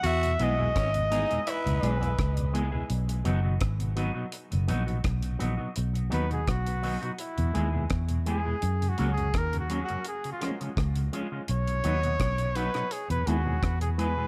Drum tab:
HH |xxx-xxxxxxxxxxx-|xxx-xxx-xxxxxxx-|xxxxxxoxxxx-xxx-|xxxxxxxxxxxxxxx-|
SD |----r-------r---|----r-------r---|----r-------r---|----r-----r-r---|
BD |----o-------o---|----o-------o---|----o-------o---|----o-------o---|

HH |xxxxxxxxxxx-xxx-|
SD |----r--r----r---|
BD |----o-------o---|